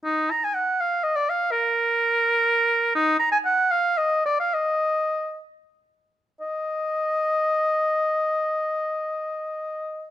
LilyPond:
\new Staff \with { instrumentName = "Oboe" } { \time 6/8 \key ees \minor \tempo 4. = 69 ees'8 bes''16 aes''16 ges''8 f''8 ees''16 d''16 f''8 | bes'2. | ees'8 bes''16 aes''16 ges''8 f''8 ees''8 d''16 f''16 | ees''4. r4. |
ees''2.~ | ees''2. | }